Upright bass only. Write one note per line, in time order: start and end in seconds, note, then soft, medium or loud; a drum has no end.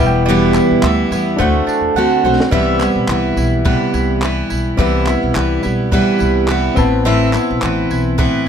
0.00 0.58 E1 loud
0.71 0.81 E2 medium
0.83 1.06 D2 loud
1.11 1.34 E2 medium
1.40 1.63 D2 loud
1.67 muted upright bass stroke soft
1.81 1.93 E2 medium
1.95 2.19 D2 medium
2.24 2.37 B1 medium
2.52 2.89 C2 medium
2.96 3.07 B1 medium
3.08 3.32 C2 loud
3.37 3.73 B1 medium
3.94 4.40 C2 loud
4.51 4.74 B1 medium
4.79 5.15 C2 loud
5.23 5.33 B1 medium
5.36 5.59 C2 loud
5.65 6.01 B1 medium
6.21 6.67 C2 loud
6.77 7.36 A1 medium
7.51 7.60 B1 loud
7.63 7.85 A1 medium
7.91 8.26 B1 medium